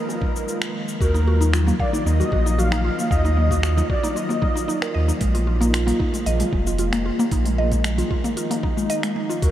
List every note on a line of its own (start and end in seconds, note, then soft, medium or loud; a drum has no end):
0.00 9.39 D#3 medium
0.00 9.38 F3 medium
0.00 0.96 G#3 medium
0.00 5.17 A#3 medium
0.00 5.18 F4 medium
0.00 0.74 A#4 medium
0.09 high bongo medium
0.09 cabasa soft
0.21 kick loud
0.21 low conga medium
0.36 cabasa medium
0.49 cabasa medium
0.62 finger snap medium
0.62 cabasa soft
0.89 cabasa medium
1.00 1.72 D#2 loud
1.00 5.18 F#3 medium
1.00 1.13 F#4 medium
1.00 1.49 A#4 loud
1.00 kick loud
1.00 cabasa medium
1.14 1.26 D#4 loud
1.14 high conga medium
1.14 cabasa soft
1.27 1.40 F#4 medium
1.41 1.53 D#4 medium
1.41 cabasa medium
1.53 1.66 F4 medium
1.53 finger snap medium
1.53 cabasa medium
1.67 1.74 A#3 medium
1.67 low conga medium
1.67 cabasa soft
1.80 2.04 D5 medium
1.80 1.93 F5 medium
1.80 kick loud
1.93 2.05 D#4 loud
1.93 high conga medium
1.93 cabasa medium
2.06 2.22 D#2 medium
2.06 2.18 A#3 medium
2.06 2.60 D#5 loud
2.06 cabasa medium
2.20 2.31 F#4 medium
2.20 low conga medium
2.20 cabasa soft
2.32 2.90 A#1 loud
2.32 2.45 F#4 medium
2.32 kick loud
2.32 high bongo soft
2.32 low conga medium
2.46 2.57 D#4 medium
2.46 cabasa medium
2.59 2.72 F#4 medium
2.59 3.10 F5 loud
2.59 cabasa medium
2.72 2.84 D#4 loud
2.72 finger snap medium
2.72 high conga medium
2.72 cabasa soft
2.85 2.98 F4 medium
2.99 3.06 A#3 medium
2.99 high conga medium
2.99 cabasa medium
3.11 3.82 D#2 loud
3.11 3.86 D#5 loud
3.11 3.24 F5 medium
3.11 kick loud
3.11 cabasa medium
3.25 3.37 D#4 loud
3.25 high bongo soft
3.25 high conga medium
3.25 cabasa soft
3.37 3.50 A#3 medium
3.51 3.62 F#4 medium
3.51 kick medium
3.51 high conga medium
3.51 cabasa medium
3.63 3.76 F#4 medium
3.63 finger snap medium
3.63 cabasa soft
3.77 3.89 D#4 loud
3.77 low conga loud
3.77 cabasa soft
3.90 4.03 F#4 medium
3.90 4.18 D5 medium
3.90 kick loud
3.90 high bongo soft
4.03 4.16 D#4 loud
4.03 high bongo soft
4.03 high conga medium
4.03 cabasa medium
4.16 4.29 F4 medium
4.16 4.95 D#5 medium
4.16 cabasa medium
4.29 4.37 A#3 medium
4.29 high bongo medium
4.29 cabasa soft
4.42 4.50 D#4 medium
4.42 kick loud
4.42 low conga medium
4.56 4.67 D#4 medium
4.56 cabasa medium
4.68 4.81 D#4 medium
4.68 cabasa medium
4.82 4.94 A#4 medium
4.82 finger snap medium
4.82 cabasa soft
4.94 5.12 D#2 medium
4.94 5.03 D#5 medium
5.08 5.20 D#4 medium
5.08 cabasa medium
5.21 5.92 A#1 loud
5.21 5.34 G#3 medium
5.21 9.39 G#3 medium
5.21 9.51 A#3 medium
5.21 7.30 F4 medium
5.21 kick loud
5.21 open hi-hat medium
5.21 cabasa medium
5.35 5.46 F4 medium
5.35 open hi-hat soft
5.35 high conga medium
5.35 cabasa soft
5.47 5.60 F4 medium
5.61 5.72 A#3 medium
5.61 open hi-hat soft
5.61 cabasa medium
5.73 5.87 F4 medium
5.73 finger snap medium
5.73 open hi-hat medium
5.73 cabasa soft
5.87 5.99 A#3 loud
5.87 open hi-hat soft
5.87 low conga medium
5.87 cabasa soft
5.99 6.13 D#4 medium
5.99 kick loud
6.13 6.21 G#3 medium
6.13 open hi-hat soft
6.13 high conga medium
6.13 cabasa medium
6.26 6.43 A#1 medium
6.26 6.40 D#5 medium
6.26 open hi-hat medium
6.26 cabasa medium
6.40 6.52 G#3 medium
6.40 open hi-hat soft
6.40 low conga medium
6.40 cabasa soft
6.53 7.11 F1 loud
6.53 6.65 G#3 medium
6.53 kick medium
6.53 high bongo soft
6.53 low conga medium
6.67 6.78 F4 medium
6.67 cabasa medium
6.79 6.92 F4 medium
6.79 open hi-hat medium
6.79 cabasa medium
6.93 7.04 A#3 loud
6.93 finger snap medium
6.93 open hi-hat soft
6.93 high conga medium
6.93 cabasa soft
7.06 7.19 F4 medium
7.19 7.31 A#3 loud
7.19 high conga medium
7.19 cabasa medium
7.32 8.03 A#1 medium
7.32 9.40 D#4 medium
7.32 7.45 D#4 medium
7.32 kick loud
7.32 open hi-hat medium
7.32 cabasa medium
7.44 7.53 G#3 medium
7.44 open hi-hat soft
7.44 high bongo soft
7.44 high conga medium
7.44 cabasa soft
7.58 7.71 D#5 loud
7.72 7.84 G#3 medium
7.72 kick medium
7.72 open hi-hat soft
7.72 high conga medium
7.72 cabasa medium
7.84 7.97 G#3 medium
7.84 finger snap medium
7.84 open hi-hat medium
7.84 cabasa soft
7.98 8.09 F4 medium
7.98 open hi-hat soft
7.98 low conga medium
7.98 cabasa soft
8.10 8.23 F4 medium
8.10 kick medium
8.10 high bongo soft
8.24 8.36 A#3 loud
8.24 open hi-hat soft
8.24 high bongo soft
8.24 high conga medium
8.24 cabasa medium
8.37 8.50 F4 medium
8.37 open hi-hat medium
8.37 cabasa medium
8.51 8.63 A#3 loud
8.51 open hi-hat soft
8.51 high bongo medium
8.51 cabasa soft
8.63 8.77 D#4 medium
8.63 kick medium
8.63 low conga medium
8.77 8.85 G#3 medium
8.77 cabasa medium
8.90 9.03 D#5 loud
8.90 open hi-hat medium
8.90 cabasa medium
9.03 9.15 G#3 medium
9.03 finger snap medium
9.03 open hi-hat soft
9.03 cabasa soft
9.16 9.29 G#3 medium
9.30 9.41 F4 medium
9.30 cabasa medium
9.42 9.51 D#2 loud
9.42 9.51 D#3 medium
9.42 9.51 F3 medium
9.42 9.51 F#3 medium
9.42 9.51 F4 medium
9.42 9.51 F#4 medium
9.42 9.51 A#4 loud
9.42 kick loud
9.42 open hi-hat medium
9.42 cabasa medium